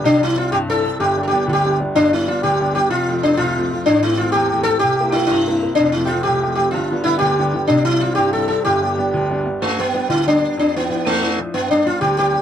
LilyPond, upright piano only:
\new Staff \with { instrumentName = "Upright piano" } { \time 6/8 \key g \mixolydian \tempo 4. = 125 <c, c>8 <g c' e'>8 <g c' e'>8 g,8 <g c' e'>8 <g c' e'>8 | <g,, g,>8 <g b d'>8 <g b d'>8 d,8 <g b d'>8 <g b d'>8 | <g,, g,>8 <g b d'>8 <g b d'>8 d,8 <g b d'>8 <g b d'>8 | <f,, f,>8 <f a c'>8 <f a c'>8 c,8 <f a c'>8 <f a c'>8 |
<a,, a,>8 <e a c'>8 <e a c'>8 e,8 <e a c'>8 <e a c'>8 | <c, c>8 <bes c' e'>8 <bes c' e'>8 g,8 <bes c' e'>8 <bes c' e'>8 | <f,, f,>8 <f a c'>8 <f a c'>8 c,8 <f a c'>8 <f a c'>8 | <g,, g,>8 <d g b>8 <d g b>8 d,8 <d g b>8 <d g b>8 |
<c, c>8 <g c' e'>8 <g c' e'>8 g,8 <g c' e'>8 <g c' e'>8 | <g,, g,>8 <g b d'>8 <g b d'>8 d,8 <g b d'>8 <g b d'>8 | g,8 <g b d'>8 <g b d'>8 d,8 <g b d'>8 <g b d'>8 | f,8 <f d' e'>8 <f d' e'>8 f,8 <f d' e'>8 <f d' e'>8 |
g,8 <g b d'>8 <g b d'>8 d,8 <g b d'>8 <g b d'>8 | }